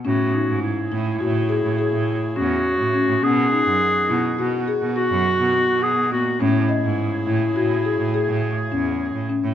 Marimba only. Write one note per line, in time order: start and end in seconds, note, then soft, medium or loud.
0.05 0.24 C#4 medium
0.34 0.71 D#4 medium
0.92 1.10 E4 medium
1.20 1.39 F#4 medium
1.49 1.68 G#4 medium
1.79 2.16 G#4 medium
2.36 2.73 C#4 medium
2.94 3.13 C#4 medium
3.23 3.41 C#4 medium
3.52 3.89 D#4 medium
4.09 4.28 E4 medium
4.39 4.57 F#4 medium
4.68 4.86 G#4 medium
4.96 5.33 F#4 medium
5.54 5.91 B3 medium
6.12 6.30 B3 medium
6.41 6.59 C#4 medium
6.69 7.06 D#5 medium
7.27 7.46 E4 medium
7.56 7.75 F#4 medium
7.85 8.04 G#4 medium
8.14 8.51 G#4 medium
8.72 9.09 C#4 medium
9.29 9.48 C#4 medium